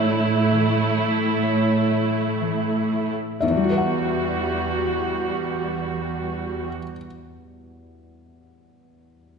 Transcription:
Already playing: A2 E3 A3 E4 C#5 E5
0.12 E4
0.54 E3
0.98 A3
1.43 C#5
1.91 A3
2.41 E3
2.93 E4
3.40 E2 G3 F#4 E5
3.50 E3
3.57 G3
3.64 F#4
3.70 B4
3.78 F#5

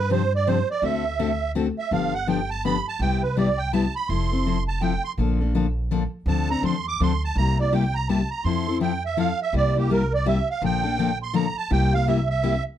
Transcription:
Already playing: G2 B4
0.10 C3 F3 C4 D4 G4 C5
0.36 D5
0.47 C3 F3 C4 D4 G4 C5
0.71 D5
0.82 D2 D3 A3 C4 F#4 A4 E5
1.19 D3 A3 C4 F#4 A4
1.55 D3 A3 C4 F#4 A4
1.79 E5
1.91 G1 D3 F3 B3 D4 G4 F5
2.14 F#5
2.27 D3 F3 B3 D4 G4 G5
2.50 A5
2.65 D3 F3 B3 D4 G4 B5
2.88 A5
2.99 C2 C3 G3 B3 E4 G4 G5
3.23 B4
3.37 C3 G3 B3 E4 G4 D5
3.58 G5
3.73 C3 G3 B3 E4 G4 A5
3.96 B5
4.08 F1 F3 C4 E4 A4 C6
4.31 C4 E4 A4
4.46 F3 C4 E4 A4
4.68 A5
4.81 F3 C4 E4 A4 G5
5.04 C6
5.18 A#1 D3 F3 A#3 D4 A4
5.40 A#3 D4 A4
5.55 D3 F3 A#3 D4 A4
5.91 D3 F3 A#3 D4 A4
6.26 D2 D3 F3 C4 D4 A4 A5
6.50 C4 D4 A4 A#5
6.63 E2 D3 F3 C4 D4 A4 C6
6.88 D6
7.00 D2 D3 F3 C4 D4 A4 C6
7.24 A5
7.36 C2 C3 G3 A#3 E4 G4 A#5
7.59 A#3 E4 G4 D5
7.72 C3 G3 A#3 E4 G4 G5
7.95 A#5
8.09 C3 G3 A#3 E4 G4 A5
8.30 A#5
8.44 F2 F3 C4 E4 A4 C6
8.67 C4 E4 A4
8.80 F3 C4 E4 A4 G5
9.06 E5
9.17 F3 C4 E4 A4 F5
9.42 E5
9.53 C2 C3 G3 A#3 E4 G4
9.57 D5
9.76 A#3 E4 G4
9.90 C3 G3 A#3 E4 G4 A#4
10.14 D5
10.26 C3 G3 A#3 E4 G4 E5
10.50 F5
10.62 A#1 D3 F3 A#3 D4 A4 G5
10.84 A#3 D4 A4
10.98 D3 F3 A#3 D4 A4
11.23 C6
11.33 D3 F3 A#3 D4 A4 A#5
11.58 A5
11.70 C2 C3 G3 A#3 E4 G4 G5
11.94 A#3 E4 G4 F5
12.07 C3 G3 A#3 E4 G4 E5
12.30 E5
12.43 C3 G3 A#3 E4 G4

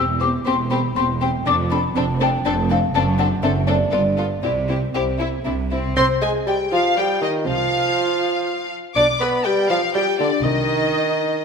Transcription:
Already playing: E1 E2 E6
0.20 C4 G4 C5 D6
0.45 E1 E2 C4 G4 C5 C6
0.71 C4 G4 C5 B5
0.95 E1 E2 C4 G4 C5 C6
1.21 C4 G4 C5 G5
1.45 F1 F2 C4 D4 A4 D6
1.70 C4 D4 A4 B5
1.95 F1 F2 C4 D4 A4 A5
2.20 C4 D4 A4 G5
2.44 F1 F2 C4 D4 A4 A5
2.70 C4 D4 A4 F5
2.94 F#1 F#2 C4 D4 A4 A5
3.19 C4 D4 A4 F#5
3.43 F#1 F#2 C4 D4 A4 E5
3.67 C4 D4 A4 D5
3.91 G1 G2 B3 F4 A4 D5
4.18 B3 F4 A4
4.43 C2 C3 C4 E4 G4 D5
4.69 C4 E4 G4
4.94 C2 C3 C4 E4 G4 C5
5.19 C4 E4
5.45 C2 C3 C4 D4 E4
5.72 C4 E4
5.96 C2 C3 C4 C5 C6
6.21 G#3 G#4 G#5
6.46 G3 G4 G5
6.72 F3 F4 F5
6.96 G3 G4 G5
7.21 D#3 D#4 D#5
7.46 C2 C3 F3 F4 F5
8.95 B1 B2 D4 D5 D6
9.20 B3 B4 B5
9.44 G3 G4 G5
9.69 F3 F4 F5
9.95 G3 G4 G5
10.19 D3 D4 D5
10.43 C2 C3 D#3 D#4 D#5

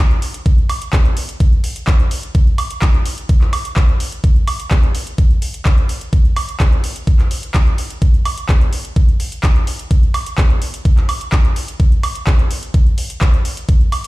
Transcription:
0.11 closed hi-hat
0.22 open hi-hat
0.34 closed hi-hat
0.46 kick, closed hi-hat
0.58 closed hi-hat
0.69 open hi-hat, high woodblock
0.82 closed hi-hat
0.93 kick, clap, closed hi-hat
1.05 closed hi-hat
1.17 open hi-hat
1.29 closed hi-hat
1.40 kick, closed hi-hat
1.52 closed hi-hat
1.64 open hi-hat
1.76 closed hi-hat
1.87 kick, clap, closed hi-hat
2.00 closed hi-hat
2.11 open hi-hat
2.23 closed hi-hat
2.35 kick, closed hi-hat
2.47 closed hi-hat
2.58 open hi-hat, high woodblock
2.71 closed hi-hat
2.82 kick, clap, closed hi-hat
2.94 closed hi-hat
3.06 open hi-hat
3.18 closed hi-hat
3.29 kick, closed hi-hat
3.41 clap, closed hi-hat
3.53 open hi-hat, high woodblock
3.65 closed hi-hat
3.76 kick, clap, closed hi-hat
3.89 closed hi-hat
4.00 open hi-hat
4.12 closed hi-hat
4.24 kick, closed hi-hat
4.36 closed hi-hat
4.48 open hi-hat, high woodblock
4.60 closed hi-hat
4.71 kick, clap, closed hi-hat
4.83 closed hi-hat
4.95 open hi-hat
5.07 closed hi-hat
5.18 kick, closed hi-hat
5.30 closed hi-hat
5.42 open hi-hat
5.54 closed hi-hat
5.65 kick, clap, closed hi-hat
5.78 closed hi-hat
5.89 open hi-hat
6.01 closed hi-hat
6.13 kick, closed hi-hat
6.25 closed hi-hat
6.36 open hi-hat, high woodblock
6.49 closed hi-hat
6.60 kick, clap, closed hi-hat
6.72 closed hi-hat
6.84 open hi-hat
6.96 closed hi-hat
7.07 kick, closed hi-hat
7.19 clap, closed hi-hat
7.31 open hi-hat
7.43 closed hi-hat
7.54 kick, clap, closed hi-hat
7.67 closed hi-hat
7.78 open hi-hat
7.90 closed hi-hat
8.02 kick, closed hi-hat
8.14 closed hi-hat
8.25 open hi-hat, high woodblock
8.38 closed hi-hat
8.49 kick, clap, closed hi-hat
8.61 closed hi-hat
8.73 open hi-hat
8.85 closed hi-hat
8.96 kick, closed hi-hat
9.08 closed hi-hat
9.20 open hi-hat
9.32 closed hi-hat
9.43 kick, clap, closed hi-hat
9.56 closed hi-hat
9.67 open hi-hat
9.79 closed hi-hat
9.91 kick, closed hi-hat
10.03 closed hi-hat
10.14 open hi-hat, high woodblock
10.26 closed hi-hat
10.38 kick, clap, closed hi-hat
10.50 closed hi-hat
10.62 open hi-hat
10.74 closed hi-hat
10.85 kick, closed hi-hat
10.97 clap, closed hi-hat
11.09 open hi-hat, high woodblock
11.21 closed hi-hat
11.32 kick, clap, closed hi-hat
11.45 closed hi-hat
11.56 open hi-hat
11.68 closed hi-hat
11.80 kick, closed hi-hat
11.92 closed hi-hat
12.03 open hi-hat, high woodblock
12.15 closed hi-hat
12.27 kick, clap, closed hi-hat
12.39 closed hi-hat
12.51 open hi-hat
12.63 closed hi-hat
12.74 kick, closed hi-hat
12.86 closed hi-hat
12.98 open hi-hat
13.10 closed hi-hat
13.21 kick, clap, closed hi-hat
13.34 closed hi-hat
13.45 open hi-hat
13.57 closed hi-hat
13.69 kick, closed hi-hat
13.81 closed hi-hat
13.92 open hi-hat, high woodblock

